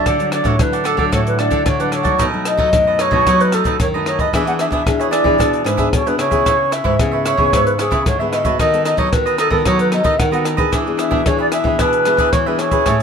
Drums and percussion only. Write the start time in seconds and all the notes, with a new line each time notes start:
0.06 kick, cross-stick, closed hi-hat
0.20 closed hi-hat
0.32 cross-stick, closed hi-hat
0.45 kick, closed hi-hat
0.59 kick, cross-stick, closed hi-hat
0.73 closed hi-hat
0.85 cross-stick, closed hi-hat
0.98 kick
1.13 kick, cross-stick, closed hi-hat
1.27 closed hi-hat
1.39 cross-stick, closed hi-hat
1.51 kick, closed hi-hat
1.66 kick, cross-stick, closed hi-hat
1.80 closed hi-hat
1.92 cross-stick, closed hi-hat
2.05 kick, closed hi-hat
2.19 kick, cross-stick, closed hi-hat
2.45 cross-stick, closed hi-hat
2.59 kick
2.73 kick, cross-stick, closed hi-hat
2.99 cross-stick, closed hi-hat
3.12 kick
3.27 kick, cross-stick, closed hi-hat
3.41 closed hi-hat
3.52 cross-stick, closed hi-hat
3.65 kick, closed hi-hat
3.80 kick, cross-stick, closed hi-hat
4.06 cross-stick, closed hi-hat
4.19 kick, closed hi-hat
4.33 kick, cross-stick, closed hi-hat
4.47 closed hi-hat
4.59 cross-stick, closed hi-hat
4.72 kick, closed hi-hat
4.86 kick, cross-stick, closed hi-hat
5.01 closed hi-hat
5.13 cross-stick, closed hi-hat
5.25 kick
5.40 kick, cross-stick, closed hi-hat
5.53 closed hi-hat
5.66 cross-stick, closed hi-hat
5.78 kick, closed hi-hat
5.93 kick, cross-stick, closed hi-hat
6.07 closed hi-hat
6.19 cross-stick, closed hi-hat
6.32 kick, closed hi-hat
6.46 kick, cross-stick, closed hi-hat
6.72 cross-stick, closed hi-hat
6.85 kick
6.99 kick, cross-stick, closed hi-hat
7.26 cross-stick, closed hi-hat
7.38 kick
7.53 kick, cross-stick, closed hi-hat
7.67 closed hi-hat
7.79 cross-stick, closed hi-hat
7.92 kick, closed hi-hat
8.06 kick, cross-stick, closed hi-hat
8.33 cross-stick, closed hi-hat
8.45 kick, closed hi-hat
8.59 kick, cross-stick, closed hi-hat
8.74 closed hi-hat
8.85 cross-stick, closed hi-hat
8.98 kick, closed hi-hat
9.13 kick, cross-stick, closed hi-hat
9.27 closed hi-hat
9.38 cross-stick, closed hi-hat
9.51 kick
9.65 kick, cross-stick, closed hi-hat
9.79 closed hi-hat
9.92 cross-stick, closed hi-hat
10.04 kick, closed hi-hat
10.20 kick, cross-stick, closed hi-hat
10.33 closed hi-hat
10.45 cross-stick, closed hi-hat
10.58 kick, closed hi-hat
10.73 kick, cross-stick, closed hi-hat
10.99 cross-stick, closed hi-hat
11.12 kick
11.26 kick, cross-stick, closed hi-hat
11.52 cross-stick, closed hi-hat
11.65 kick
11.79 kick, cross-stick, closed hi-hat
11.93 closed hi-hat
12.05 cross-stick, closed hi-hat
12.18 kick, closed hi-hat
12.33 kick, cross-stick, closed hi-hat
12.59 cross-stick, closed hi-hat
12.71 kick, closed hi-hat
12.86 kick, cross-stick, closed hi-hat